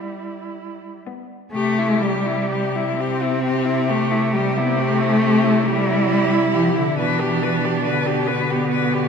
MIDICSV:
0, 0, Header, 1, 5, 480
1, 0, Start_track
1, 0, Key_signature, 0, "major"
1, 0, Tempo, 955414
1, 771, Time_signature, 12, 3, 24, 8
1, 1724, Tempo, 886263
1, 3644, Tempo, 864553
1, 4813, End_track
2, 0, Start_track
2, 0, Title_t, "Cello"
2, 0, Program_c, 0, 42
2, 535, Note_on_c, 0, 59, 38
2, 712, Note_off_c, 0, 59, 0
2, 777, Note_on_c, 0, 67, 52
2, 900, Note_on_c, 0, 64, 46
2, 908, Note_off_c, 0, 67, 0
2, 1019, Note_on_c, 0, 67, 51
2, 1027, Note_off_c, 0, 64, 0
2, 1136, Note_on_c, 0, 64, 46
2, 1144, Note_off_c, 0, 67, 0
2, 1254, Note_off_c, 0, 64, 0
2, 1261, Note_on_c, 0, 67, 44
2, 1386, Note_on_c, 0, 64, 46
2, 1393, Note_off_c, 0, 67, 0
2, 1509, Note_on_c, 0, 67, 46
2, 1517, Note_off_c, 0, 64, 0
2, 1622, Note_on_c, 0, 64, 43
2, 1629, Note_off_c, 0, 67, 0
2, 1728, Note_off_c, 0, 64, 0
2, 1731, Note_on_c, 0, 67, 43
2, 1843, Note_on_c, 0, 64, 43
2, 1851, Note_off_c, 0, 67, 0
2, 1972, Note_on_c, 0, 67, 47
2, 1980, Note_off_c, 0, 64, 0
2, 2096, Note_on_c, 0, 64, 44
2, 2104, Note_off_c, 0, 67, 0
2, 2212, Note_off_c, 0, 64, 0
2, 2216, Note_on_c, 0, 67, 45
2, 2342, Note_on_c, 0, 64, 43
2, 2350, Note_off_c, 0, 67, 0
2, 2460, Note_on_c, 0, 67, 45
2, 2468, Note_off_c, 0, 64, 0
2, 2574, Note_on_c, 0, 64, 43
2, 2582, Note_off_c, 0, 67, 0
2, 2691, Note_off_c, 0, 64, 0
2, 2694, Note_on_c, 0, 67, 48
2, 2813, Note_on_c, 0, 64, 43
2, 2821, Note_off_c, 0, 67, 0
2, 2932, Note_on_c, 0, 67, 44
2, 2940, Note_off_c, 0, 64, 0
2, 3044, Note_on_c, 0, 64, 41
2, 3052, Note_off_c, 0, 67, 0
2, 3162, Note_off_c, 0, 64, 0
2, 3166, Note_on_c, 0, 67, 49
2, 3287, Note_on_c, 0, 64, 47
2, 3295, Note_off_c, 0, 67, 0
2, 3412, Note_on_c, 0, 67, 48
2, 3420, Note_off_c, 0, 64, 0
2, 3527, Note_on_c, 0, 64, 43
2, 3535, Note_off_c, 0, 67, 0
2, 3645, Note_off_c, 0, 64, 0
2, 3650, Note_on_c, 0, 71, 52
2, 3769, Note_on_c, 0, 67, 46
2, 3777, Note_off_c, 0, 71, 0
2, 3895, Note_on_c, 0, 71, 48
2, 3903, Note_off_c, 0, 67, 0
2, 4017, Note_on_c, 0, 67, 44
2, 4025, Note_off_c, 0, 71, 0
2, 4128, Note_off_c, 0, 67, 0
2, 4131, Note_on_c, 0, 71, 48
2, 4248, Note_on_c, 0, 67, 46
2, 4256, Note_off_c, 0, 71, 0
2, 4365, Note_on_c, 0, 71, 49
2, 4374, Note_off_c, 0, 67, 0
2, 4493, Note_on_c, 0, 67, 44
2, 4501, Note_off_c, 0, 71, 0
2, 4603, Note_off_c, 0, 67, 0
2, 4607, Note_on_c, 0, 71, 44
2, 4730, Note_on_c, 0, 67, 44
2, 4738, Note_off_c, 0, 71, 0
2, 4813, Note_off_c, 0, 67, 0
2, 4813, End_track
3, 0, Start_track
3, 0, Title_t, "Cello"
3, 0, Program_c, 1, 42
3, 0, Note_on_c, 1, 64, 49
3, 391, Note_off_c, 1, 64, 0
3, 2211, Note_on_c, 1, 60, 64
3, 2934, Note_on_c, 1, 64, 69
3, 2942, Note_off_c, 1, 60, 0
3, 3643, Note_off_c, 1, 64, 0
3, 3647, Note_on_c, 1, 62, 65
3, 4371, Note_on_c, 1, 59, 67
3, 4380, Note_off_c, 1, 62, 0
3, 4813, Note_off_c, 1, 59, 0
3, 4813, End_track
4, 0, Start_track
4, 0, Title_t, "Cello"
4, 0, Program_c, 2, 42
4, 0, Note_on_c, 2, 55, 49
4, 530, Note_off_c, 2, 55, 0
4, 769, Note_on_c, 2, 57, 86
4, 1003, Note_on_c, 2, 55, 67
4, 1011, Note_off_c, 2, 57, 0
4, 1489, Note_off_c, 2, 55, 0
4, 1492, Note_on_c, 2, 60, 84
4, 1979, Note_on_c, 2, 57, 79
4, 1987, Note_off_c, 2, 60, 0
4, 2214, Note_on_c, 2, 55, 69
4, 2222, Note_off_c, 2, 57, 0
4, 2341, Note_on_c, 2, 59, 70
4, 2349, Note_off_c, 2, 55, 0
4, 2445, Note_on_c, 2, 57, 85
4, 2453, Note_off_c, 2, 59, 0
4, 2927, Note_on_c, 2, 55, 83
4, 2935, Note_off_c, 2, 57, 0
4, 3406, Note_off_c, 2, 55, 0
4, 3410, Note_on_c, 2, 53, 77
4, 3525, Note_off_c, 2, 53, 0
4, 3531, Note_on_c, 2, 50, 65
4, 3643, Note_on_c, 2, 52, 76
4, 3651, Note_off_c, 2, 50, 0
4, 4135, Note_on_c, 2, 50, 68
4, 4143, Note_off_c, 2, 52, 0
4, 4356, Note_off_c, 2, 50, 0
4, 4359, Note_on_c, 2, 50, 66
4, 4813, Note_off_c, 2, 50, 0
4, 4813, End_track
5, 0, Start_track
5, 0, Title_t, "Cello"
5, 0, Program_c, 3, 42
5, 771, Note_on_c, 3, 48, 59
5, 3623, Note_off_c, 3, 48, 0
5, 3648, Note_on_c, 3, 47, 59
5, 4813, Note_off_c, 3, 47, 0
5, 4813, End_track
0, 0, End_of_file